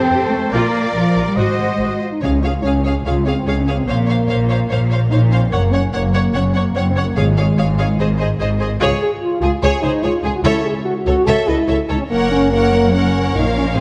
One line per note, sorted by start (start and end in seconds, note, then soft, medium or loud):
0.00 0.29 F2 medium
0.00 0.31 C4 medium
0.00 0.52 A4 soft
0.00 0.52 A4 medium
0.00 0.50 C5 medium
0.00 0.54 C5 medium
0.00 0.53 G5 medium
0.11 0.19 F2 soft
0.11 0.21 G4 medium
0.32 0.53 A3 medium
0.52 0.61 A#1 medium
0.52 0.94 A#3 medium
0.52 0.73 F4 medium
0.52 0.69 F4 medium
0.52 1.37 A#4 soft
0.52 0.94 A#4 medium
0.52 0.69 A#4 soft
0.52 0.94 D5 soft
0.52 1.38 D5 soft
0.52 0.93 F5 soft
0.94 1.03 A#1 soft
0.94 1.26 F3 medium
0.94 1.04 F4 soft
0.94 1.39 A#4 soft
0.94 1.39 D5 soft
0.94 1.36 F5 soft
1.16 1.24 A#1 soft
1.16 1.25 F4 soft
1.27 1.38 G3 medium
1.36 1.45 G#1 medium
1.36 2.02 G#3 medium
1.36 1.52 F#4 soft
1.36 1.58 F#4 soft
1.36 2.00 C5 soft
1.36 1.52 C5 soft
1.36 2.02 C5 soft
1.36 2.01 D#5 soft
1.36 2.02 D#5 soft
1.36 2.01 F#5 soft
1.59 1.67 G#1 soft
1.59 1.68 F#4 soft
1.80 1.88 G#1 soft
1.80 2.00 F#4 medium
1.80 1.90 F#4 soft
2.01 2.12 F4 medium
2.12 2.23 D#4 medium
2.22 2.60 C#2 medium
2.22 2.60 C#2 soft
2.22 2.81 C#3 medium
2.22 2.43 C#4 medium
2.22 2.31 G#4 soft
2.22 2.30 C#5 soft
2.22 2.32 F5 soft
2.43 2.64 F4 medium
2.43 2.53 G#4 soft
2.43 2.51 C#5 soft
2.43 2.53 F5 soft
2.62 3.01 C#2 soft
2.62 2.83 C#4 medium
2.62 2.73 G#4 soft
2.62 2.70 C#5 soft
2.62 2.73 F5 soft
2.84 2.94 C#4 medium
2.84 2.94 G#4 soft
2.84 2.92 C#5 soft
2.84 2.94 F5 soft
3.06 3.42 C#2 soft
3.06 3.42 C#2 medium
3.06 3.26 F4 medium
3.06 3.14 G#4 soft
3.06 3.14 C#5 soft
3.06 3.14 F5 soft
3.25 3.46 C4 medium
3.25 3.35 G#4 soft
3.25 3.34 C#5 soft
3.25 3.36 F5 soft
3.47 3.83 C#2 medium
3.47 3.83 C#2 soft
3.47 3.59 C#4 medium
3.47 3.55 G#4 soft
3.47 3.55 C#5 soft
3.47 3.56 F5 soft
3.60 3.67 C#4 medium
3.67 3.76 G#4 soft
3.67 3.75 C#5 soft
3.67 3.76 F5 soft
3.76 3.89 C4 medium
3.87 4.25 A#1 soft
3.87 4.24 A#2 medium
3.87 4.91 A#3 medium
3.87 3.96 C5 soft
3.87 3.96 C#5 soft
3.87 3.98 F5 soft
4.08 4.17 C5 soft
4.08 4.16 C#5 soft
4.08 4.17 F5 soft
4.28 4.66 A#1 medium
4.28 4.65 A#2 medium
4.28 4.37 C5 soft
4.28 4.36 C#5 soft
4.28 4.38 F5 soft
4.49 4.58 C5 soft
4.49 4.57 C#5 soft
4.49 4.58 F5 soft
4.69 5.07 A#1 medium
4.69 5.07 A#2 medium
4.69 4.79 C5 soft
4.69 4.77 C#5 soft
4.69 4.80 F5 soft
4.91 5.00 C5 soft
4.91 4.99 C#5 soft
4.91 5.00 F5 soft
5.10 5.48 A#1 medium
5.10 5.48 A#2 medium
5.10 5.20 D#4 medium
5.10 5.20 C5 soft
5.10 5.21 C#5 soft
5.10 5.19 F5 soft
5.31 5.42 C#4 medium
5.31 5.40 C5 soft
5.31 5.40 C#5 soft
5.31 5.40 F5 soft
5.40 5.52 C4 medium
5.50 5.89 F#1 medium
5.50 5.89 F#2 medium
5.50 5.72 A#3 medium
5.50 5.61 C#5 soft
5.50 5.61 F#5 soft
5.72 5.93 C#4 medium
5.72 5.81 C#5 soft
5.72 5.82 C#5 soft
5.72 5.82 F#5 soft
5.93 6.30 F#1 medium
5.93 6.30 F#2 medium
5.93 6.12 A#3 medium
5.93 6.02 C#5 soft
5.93 6.01 F#5 soft
6.14 6.34 A#3 medium
6.14 6.22 C#5 soft
6.14 6.23 C#5 soft
6.14 6.22 F#5 soft
6.34 6.71 F#1 medium
6.34 6.71 F#2 medium
6.34 6.56 C#4 medium
6.34 6.43 C#5 soft
6.34 6.44 C#5 soft
6.34 6.42 F#5 soft
6.54 6.76 A#3 medium
6.54 6.63 C#5 soft
6.54 6.64 C#5 soft
6.54 6.62 F#5 soft
6.75 7.12 F#1 medium
6.75 7.12 F#2 medium
6.75 6.90 C4 medium
6.75 6.83 C#5 soft
6.75 6.84 C#5 soft
6.75 6.85 F#5 soft
6.91 6.97 C4 medium
6.96 7.04 C#5 soft
6.96 7.06 C#5 soft
6.96 7.05 F#5 soft
7.04 7.17 A#3 medium
7.16 7.53 G#1 medium
7.16 7.53 G#2 medium
7.16 7.75 G#2 medium
7.16 8.18 G#3 medium
7.16 7.24 G#4 soft
7.16 7.25 C#5 soft
7.16 7.25 F5 soft
7.37 7.45 G#4 soft
7.37 7.46 C#5 soft
7.37 7.46 F5 soft
7.57 7.94 G#1 medium
7.57 7.94 G#2 medium
7.57 7.66 G#4 soft
7.57 7.66 C#5 soft
7.57 7.66 F5 soft
7.79 7.87 G#4 soft
7.79 7.87 C#5 soft
7.79 7.87 F5 soft
7.99 8.35 G#1 medium
7.99 8.35 G#2 medium
7.99 8.07 G#4 soft
7.99 8.07 C5 soft
7.99 8.08 D#5 soft
8.20 8.28 G#4 soft
8.20 8.28 C5 soft
8.20 8.28 D#5 soft
8.40 8.76 G#1 medium
8.40 8.76 G#2 medium
8.40 8.48 G#4 medium
8.40 8.48 C5 medium
8.40 8.49 D#5 medium
8.60 8.68 G#4 soft
8.60 8.69 C5 soft
8.60 8.69 D#5 soft
8.80 8.89 C#2 medium
8.80 8.90 C#2 medium
8.80 8.90 F4 medium
8.80 9.00 G#4 medium
8.80 9.01 C#5 medium
9.02 9.12 G#4 medium
9.22 9.39 F4 medium
9.41 9.51 C#2 soft
9.41 9.51 C#2 medium
9.41 9.50 F4 medium
9.41 9.51 G#4 soft
9.41 9.51 G#4 medium
9.63 9.71 C#2 medium
9.63 9.82 G#4 medium
9.63 9.83 G#4 medium
9.63 9.82 C#5 medium
9.82 9.91 C#2 medium
9.82 10.03 D#4 medium
9.82 9.91 G#4 soft
9.82 9.91 C5 soft
9.82 9.92 C5 medium
10.03 10.11 C#2 medium
10.03 10.12 C#2 medium
10.03 10.34 F4 medium
10.03 10.11 G#4 medium
10.03 10.12 C#5 medium
10.23 10.31 C#2 medium
10.23 10.32 C#2 soft
10.23 10.32 G#4 medium
10.23 10.33 G#4 medium
10.35 10.45 F#4 medium
10.44 10.52 C#2 medium
10.44 10.53 C#2 medium
10.44 11.03 C#3 medium
10.44 10.65 E4 medium
10.44 10.64 A4 medium
10.44 10.64 C#5 medium
10.44 10.64 E5 medium
10.66 10.75 G#4 medium
10.85 10.95 F#4 medium
11.05 11.14 C#2 medium
11.05 11.15 C#2 medium
11.05 11.26 F#4 medium
11.05 11.15 A4 medium
11.05 11.15 C#5 medium
11.26 11.35 C#2 medium
11.26 11.48 A4 loud
11.26 11.47 A4 medium
11.26 11.47 C#5 medium
11.26 11.47 E5 medium
11.47 11.55 C#2 medium
11.47 11.56 C#2 medium
11.47 11.68 E4 medium
11.47 11.56 A4 medium
11.47 11.56 B4 medium
11.47 11.56 D#5 soft
11.67 11.76 C#2 medium
11.67 11.77 C#2 medium
11.67 11.78 E4 medium
11.67 11.77 A4 medium
11.67 11.75 C#5 medium
11.67 11.77 E5 medium
11.89 11.97 C#2 medium
11.89 11.98 C#2 medium
11.89 12.00 D#4 medium
11.89 11.97 A4 medium
11.89 11.98 C#5 medium
11.98 12.03 C#4 medium
12.10 13.31 F#1 medium
12.10 13.31 F#2 medium
12.10 12.31 A#3 medium
12.10 12.49 A#4 medium
12.10 12.49 C#5 medium
12.10 12.49 F#5 medium
12.32 12.52 C#4 medium
12.52 12.71 A#3 medium
12.52 12.93 A#4 medium
12.52 12.91 C#5 medium
12.52 12.93 F#5 medium
12.72 12.93 A#3 medium
12.92 13.34 C#4 medium
12.92 13.76 A#4 medium
12.92 13.75 C#5 medium
12.92 13.35 F#5 medium
13.35 13.77 A#1 medium
13.35 13.77 A#2 medium
13.35 13.45 D#4 medium
13.35 13.77 F5 medium
13.56 13.66 C#4 medium
13.76 13.80 G#1 medium
13.76 13.80 G#2 medium
13.76 13.80 C4 medium
13.76 13.80 G#4 medium